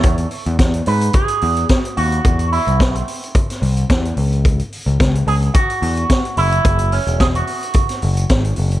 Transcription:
0.03 E2, kick, closed hi-hat
0.18 closed hi-hat
0.31 open hi-hat
0.46 E2, closed hi-hat
0.59 E2, kick, snare, closed hi-hat
0.74 closed hi-hat
0.86 G#2 B4, open hi-hat
1.01 closed hi-hat
1.13 G#4, kick, closed hi-hat
1.28 closed hi-hat
1.41 E2, open hi-hat
1.57 closed hi-hat
1.69 kick, snare, closed hi-hat
1.77 F#4
1.85 closed hi-hat
1.97 D#2 F#4, open hi-hat
2.12 closed hi-hat
2.25 E2, kick, closed hi-hat
2.39 closed hi-hat
2.52 E4, open hi-hat
2.67 C2, closed hi-hat
2.80 B1 B3, kick, snare, closed hi-hat
2.95 C4, closed hi-hat
3.08 open hi-hat
3.24 closed hi-hat
3.35 kick, closed hi-hat
3.50 snare, closed hi-hat
3.62 C2, open hi-hat
3.77 closed hi-hat
3.90 E2, kick, snare, closed hi-hat
4.05 closed hi-hat
4.17 C#2, open hi-hat
4.33 closed hi-hat
4.45 kick, closed hi-hat
4.59 closed hi-hat
4.73 open hi-hat
4.86 C#2, closed hi-hat
5.00 C#2, kick, snare, closed hi-hat
5.15 closed hi-hat
5.27 C#2 G#4, open hi-hat
5.43 closed hi-hat
5.54 F#4, kick, closed hi-hat
5.70 closed hi-hat
5.82 E2, open hi-hat
5.97 closed hi-hat
6.10 kick, snare, closed hi-hat
6.25 closed hi-hat
6.37 F#1 E4, open hi-hat
6.52 closed hi-hat
6.65 F#1, kick, closed hi-hat
6.79 closed hi-hat
6.92 C#4, open hi-hat
7.07 E1, closed hi-hat
7.20 E1 G#4, kick, snare, closed hi-hat
7.35 F#4, closed hi-hat
7.47 open hi-hat
7.63 closed hi-hat
7.73 kick, closed hi-hat
7.89 snare, closed hi-hat
8.02 F#1, open hi-hat
8.17 closed hi-hat
8.29 G#1, kick, snare, closed hi-hat
8.45 closed hi-hat
8.56 F#1, open hi-hat
8.72 closed hi-hat

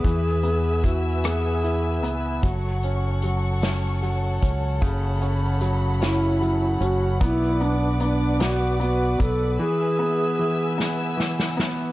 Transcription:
Already playing: G#4 B4
0.04 E2 E3 E5 G#5 E6, kick, closed hi-hat
0.43 B3, closed hi-hat
0.83 E4 F#4, kick, closed hi-hat
1.24 B3 G#4, cross-stick, closed hi-hat
1.63 E4, closed hi-hat
2.03 C#2 B3, closed hi-hat
2.43 F#1 F#3 A4 C#5 F#5 C#6, kick, closed hi-hat
2.83 C#4, closed hi-hat
3.22 F#3, closed hi-hat
3.62 C#4, snare, closed hi-hat
4.02 F#3, closed hi-hat
4.42 C#2 C#4, kick, closed hi-hat
4.82 F#1 C#3 B5, kick, closed hi-hat
5.21 C#4, closed hi-hat
5.61 F#3, closed hi-hat
6.01 C#4 E4, snare, closed hi-hat
6.41 F#3, closed hi-hat
6.81 F#1 C#4 F#4, closed hi-hat
7.21 B1 B3 E4 B4 D5 D6, kick, closed hi-hat
7.60 B3 D4, closed hi-hat
8.00 B3 D4, closed hi-hat
8.40 B3 F#4, snare, closed hi-hat
8.80 B3 F#4, closed hi-hat
9.19 B1 B3 A4, kick, closed hi-hat
9.59 E3 G#4 E5 G#5 E6
9.99 B3
10.39 E3
10.78 B3, snare
11.17 E3, snare
11.40 snare
11.57 B3, snare

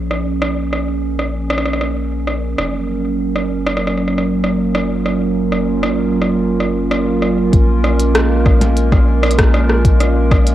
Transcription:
Already playing: A#1 F3 A#3 C#4 G#4 A#4
0.11 cross-stick
0.42 cross-stick
0.73 cross-stick
1.19 cross-stick
1.50 cross-stick
1.58 cross-stick
1.65 cross-stick
1.73 cross-stick
1.81 cross-stick
2.27 cross-stick
2.58 F#1 F#3, cross-stick
3.11 F4
3.36 cross-stick
3.67 cross-stick
3.77 cross-stick
3.87 cross-stick
3.97 cross-stick
4.08 cross-stick
4.18 cross-stick
4.44 cross-stick
4.75 cross-stick
5.06 cross-stick
5.52 cross-stick
5.83 cross-stick
6.22 cross-stick
6.60 cross-stick
6.91 cross-stick
7.22 cross-stick
7.53 A#1 G#3, kick, closed hi-hat
7.84 cross-stick
8.00 closed hi-hat
8.15 cross-stick, closed hi-hat
8.46 kick, cross-stick
8.61 closed hi-hat, percussion blips
8.77 closed hi-hat
8.92 kick, cross-stick, percussion blips
9.23 cross-stick
9.31 closed hi-hat
9.39 kick, cross-stick, closed hi-hat
9.54 cross-stick
9.70 cross-stick
9.85 kick, closed hi-hat
10.00 cross-stick, closed hi-hat
10.31 kick, cross-stick
10.47 closed hi-hat

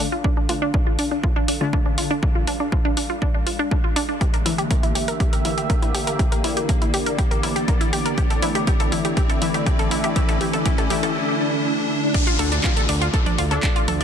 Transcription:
Already playing: D4 A4 F5, riser
0.12 F4
0.24 D4, kick, mid tom
0.37 D4
0.49 D3 A3 D4 F4, open hi-hat, low conga
0.62 D4
0.74 D4, kick, mid tom
0.87 F4
0.99 D4, open hi-hat
1.11 D4
1.23 F4, kick, mid tom
1.36 D4
1.48 D4, open hi-hat
1.61 D3 A3 D4 F4
1.73 D4, kick, mid tom
1.86 D4, low conga
1.98 F4, open hi-hat
2.11 D4
2.23 D4, kick, mid tom
2.35 F4
2.47 D4, open hi-hat, low conga
2.60 D4
2.72 F4, kick, mid tom, low conga
2.85 D4
2.97 D4, open hi-hat
3.10 F4
3.22 D4, kick, mid tom
3.34 D4
3.46 F4, open hi-hat, low conga
3.59 D4
3.71 D4, kick, mid tom
3.84 F4
3.96 D4, open hi-hat
4.09 D4
4.21 D3 A#3 G4 E5, kick, closed hi-hat, mid tom
4.34 A#4, closed hi-hat
4.46 E3 A#3 E4, open hi-hat, mid tom, low conga
4.58 G4, closed hi-hat
4.70 A#4, kick, closed hi-hat, mid tom
4.83 E4, closed hi-hat
4.95 G4, open hi-hat, mid tom
5.08 A#4, closed hi-hat
5.20 G4, kick, closed hi-hat, mid tom
5.33 A#4, closed hi-hat
5.45 E3 A#3 E4, open hi-hat, mid tom
5.58 G4, closed hi-hat
5.70 A#4, kick, closed hi-hat, mid tom
5.82 E4, closed hi-hat, low conga
5.94 G4, open hi-hat, mid tom
6.07 A#4, closed hi-hat
6.19 G4 D5, kick, closed hi-hat, mid tom
6.32 A#4, closed hi-hat
6.44 E3 A#3 E4, open hi-hat, mid tom, low conga
6.57 G4, closed hi-hat
6.69 A#4, kick, closed hi-hat, mid tom, low conga
6.82 E4, closed hi-hat
6.94 G4, open hi-hat, mid tom
7.06 A#4, closed hi-hat
7.18 G4, kick, closed hi-hat, mid tom
7.31 A#4, closed hi-hat
7.43 E3 A#3 E4, open hi-hat, mid tom, low conga
7.56 G4, closed hi-hat
7.68 A#4, kick, closed hi-hat, mid tom
7.81 E4, closed hi-hat
7.93 G4, open hi-hat, mid tom
8.05 A#4, closed hi-hat
8.18 A3 E4 G4, kick, closed hi-hat, mid tom
8.30 A4, closed hi-hat, mid tom
8.42 E3 A3 E4, open hi-hat, mid tom, low conga
8.55 G4, closed hi-hat, mid tom
8.67 G4, kick, closed hi-hat, mid tom
8.80 A4, closed hi-hat, mid tom
8.92 E3 A3 E4, open hi-hat, mid tom
9.05 G4, closed hi-hat, mid tom
9.17 G4, kick, closed hi-hat, mid tom
9.29 A4, closed hi-hat, mid tom
9.42 E3 A3 E4, open hi-hat, mid tom
9.54 G4, closed hi-hat, mid tom
9.66 G4, kick, closed hi-hat, mid tom
9.79 A4, closed hi-hat, mid tom, low conga
9.91 E3 A3 E4, open hi-hat, mid tom
10.04 G4, closed hi-hat, mid tom
10.16 E3 A3 E4 G4, kick, closed hi-hat, mid tom
10.29 A4, closed hi-hat, mid tom
10.41 E3 A3 E4 G4, open hi-hat, mid tom, low conga
10.53 A4, closed hi-hat, mid tom
10.65 E3 A3 E4 G4, kick, closed hi-hat, mid tom, low conga
10.78 A4, closed hi-hat, mid tom
10.90 E3 A3 E4 G4, open hi-hat, mid tom
11.03 A4, closed hi-hat, mid tom
12.14 A3 D4 F4 D5, kick, closed hi-hat, downlifter
12.27 F4 F5, closed hi-hat
12.39 D2 D3 A3 D4 A4 A5, open hi-hat
12.52 D4 D5, closed hi-hat
12.64 F4 F5, kick, clap, closed hi-hat
12.77 A4 A5, closed hi-hat
12.89 D2 D4 D5, open hi-hat
13.01 F4 F5, closed hi-hat
13.14 A4 A5, kick, closed hi-hat
13.26 D4 D5, closed hi-hat, low conga
13.38 D2 F4 F5, open hi-hat
13.51 D3 A3 D4 A4 A5, closed hi-hat
13.63 D4 D5, kick, clap, closed hi-hat
13.76 F4 F5, closed hi-hat
13.88 D2 A4 A5, open hi-hat, low conga
14.01 D4 D5, closed hi-hat

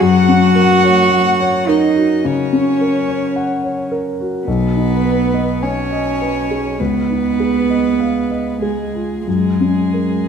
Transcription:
0.00 F#2 F#4 F#5
0.28 C#4
0.55 A#4
0.83 C#5
1.12 F#5
1.40 C#5
1.68 D#4 A#4 D#5
1.96 F#4
2.25 C#3 C#4 C#5
2.53 C#4
2.81 A#4
3.08 C#5
3.36 F#5
3.64 C#5
3.92 A#4
4.20 F#4
4.47 B1 B3 B4
4.76 D#4
5.05 B4
5.34 D#5
5.62 C#4 C#5 G#5
5.92 D#5
6.22 B4
6.51 G#4
6.79 C#2 B3 B4
7.10 D#4
7.40 G#4
7.70 D#5
8.00 F5
8.31 D#5
8.62 G#3 G#4
8.94 F4
9.26 F#2 G#3 G#4
9.60 C#4
9.94 A#4

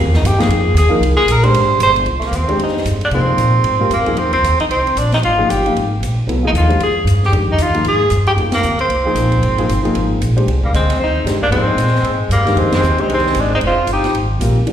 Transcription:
0.05 D#2
0.14 C2 D#4, snare
0.23 G2 G4, hi-hat pedal, ride
0.39 F3 A#3 D#4 G#4, snare, ride
0.48 F2, ride
0.74 D#2 G#4, hi-hat pedal, ride
0.89 F3 A#3 D#4 A#4, muted upright bass stroke
1.00 C2, ride
1.17 G#4
1.26 A#1, hi-hat pedal, ride
1.31 A#4
1.43 G#3 D4 G4 C5, ride
1.52 G#1, ride
1.79 G1, hi-hat pedal, ride
1.83 C5
1.96 ride
2.05 C2, ride
2.19 A3, snare, ride
2.26 A#3
2.31 D#2, hi-hat pedal, ride
2.36 C4
2.48 G#3 D4 G4 C5, ride
2.58 F2, ride
2.63 D#4
2.68 snare
2.77 snare
2.85 G2, hi-hat pedal, ride
3.01 D4, ride
3.11 C3 F3 A#3 C4 D#4 G#4, ride
3.38 A#2, hi-hat pedal, ride
3.64 G#2, ride
3.80 G3 C4 F4 A#4
3.90 G2 A#3, hi-hat pedal, ride
3.99 F2
4.06 D#2 F3 A#3 D#4 G#4, ride
4.16 F2 C4, ride
4.25 D#2
4.33 C2 C4, ride
4.43 D#2, hi-hat pedal, ride
4.59 D#4, muted upright bass stroke, ride
4.70 C2 C4, ride
4.87 ride
4.96 A#1 D4, hi-hat pedal, ride
5.12 D#4, snare, ride
5.22 G#1 F4, ride
5.38 F3 A#3 D#4 G#4
5.49 G1 G4, hi-hat pedal, ride
5.66 F3 A#3 D#4 F4, ride
5.75 G#1, ride
6.01 A#1, hi-hat pedal, ride
6.27 C2 F#3 B3 E4 A4, ride
6.43 F3 A#3 D#4 G#4
6.47 D#4
6.53 D#2, hi-hat pedal, ride
6.57 F4
6.68 G#3 D4 G4 C5, ride
6.78 F2, ride
6.83 G#4
7.05 G2, hi-hat pedal, ride
7.23 G4, snare
7.31 F2 D#3 G#3 D4 G4, ride
7.48 D#4, kick
7.58 D#2 F4, hi-hat pedal, ride
7.74 F3 A#3 D#4 F4, ride
7.84 G#2 G#4, ride
8.10 G2, hi-hat pedal, ride
8.27 G4, ride
8.36 F2 F3 A#3 D#4 G#4, ride
8.52 A#3, snare, ride
8.63 D2, hi-hat pedal
8.79 C4, ride
8.89 C2, ride
9.05 F3 A#3 D#4 G#4
9.15 A#1, hi-hat pedal, ride
9.32 kick, ride
9.42 G#1, ride
9.58 F3 A#3 D#4 G#4, ride
9.69 G1, hi-hat pedal, ride
9.83 F3 A#3 D#4 G#4, ride
9.95 G#1, ride
10.21 A#1, hi-hat pedal, ride
10.36 G#3 D4 G4 C5, ride
10.47 C2, ride
10.63 G3 A#3, kick
10.73 D2 G#3 C4, hi-hat pedal, ride
10.90 snare, ride
10.99 D#2 C4
11.03 D#4
11.24 G2 G#3 D4 G4 C5, snare, hi-hat pedal, ride
11.42 A#3 D4, kick
11.50 G#2 F3 G#3 A#3 C4 D#4 G#4, ride
11.76 A#2, hi-hat pedal, ride
11.87 snare
11.95 snare
12.04 ride
12.29 G2 G3 A#3, hi-hat pedal, ride
12.45 D#3 G#3 D4 G4, snare, ride
12.56 F2 G#3 C4, ride
12.72 G#3 C4, snare, ride
12.83 D#2, hi-hat pedal
12.98 D#3 G#3 C4 D4 D#4 G4, muted upright bass stroke, ride
13.09 C2 G#3, ride
13.14 C4, snare
13.26 snare
13.35 G#1 G#3, hi-hat pedal, ride
13.40 D4
13.55 C4 D#4
13.61 F1 C4, ride
13.67 F4
13.76 muted upright bass stroke
13.87 G1, hi-hat pedal, ride
13.92 D#4 G4
14.04 snare, ride
14.13 G#1, ride
14.39 A#1 G3 C4 F4 A#4, hi-hat pedal, ride
14.65 C2 E3 A3 D4 G4, ride

